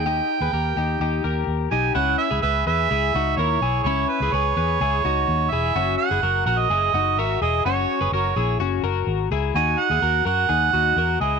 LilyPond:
<<
  \new Staff \with { instrumentName = "Harmonica" } { \time 4/4 \key cis \dorian \tempo 4 = 126 g''2. r8 gis''8 | fis''8 e''8 e''8 e''4. cis''4 | cis''8 b'8 cis''2~ cis''8 e''8~ | e''8 fis''4 fis''16 dis''4~ dis''16 e''8 dis''8 |
cis''4 cis''4 r2 | gis''8 fis''4 fis''2 dis''8 | }
  \new Staff \with { instrumentName = "Clean electric guitar" } { \time 4/4 \key cis \dorian <dis' g'>8. <gis' b'>16 <g' ais'>8 <dis' g'>8 <dis' g'>8 <g' ais'>4 <dis' g'>8 | <cis' e'>8. <e' gis'>16 <gis' b'>8 <gis' b'>8 <e' gis'>8 <dis' fis'>8 <e' ais'>8 <e' gis'>8 | <cis' e'>8. <e' gis'>16 <gis' b'>8 <gis' b'>8 <e' gis'>8 <dis' fis'>4 <e' gis'>8 | <cis' fis'>8. <e' gis'>16 <fis' ais'>8 <fis' ais'>8 <e' gis'>8 <dis' fis'>8 <fis' ais'>8 <e' gis'>8 |
<cis' fis'>8. <gis' b'>16 <fis' ais'>8 <e' gis'>8 <cis' fis'>8 <fis' ais'>4 <e' gis'>8 | <dis' fis'>8. <e' gis'>16 <fis' ais'>8 <fis' ais'>8 <dis' gis'>8 <dis' fis'>8 <fis' ais'>8 <e' gis'>8 | }
  \new Staff \with { instrumentName = "Fingered electric bass" } { \clef bass \time 4/4 \key cis \dorian dis,8 r16 dis,16 dis,8 dis,8 dis,8 dis,8 dis,8 b,,8 | cis,8 r16 cis,16 cis,8 e,8 cis,8 cis,8 dis,8 b,,8 | cis,8 r16 cis,16 cis,8 e,8 cis,8 cis,8 dis,8 e,,8 | fis,,8 r16 fis,,16 fis,,8 ais,,8 fis,,8 fis,,8 gis,,8 e,,8 |
fis,,8 r16 fis,,16 fis,,8 ais,,8 fis,,8 fis,,8 gis,,8 cis,8 | dis,8 r16 dis,16 dis,8 fis,8 dis,8 dis,8 e,8 cis,8 | }
>>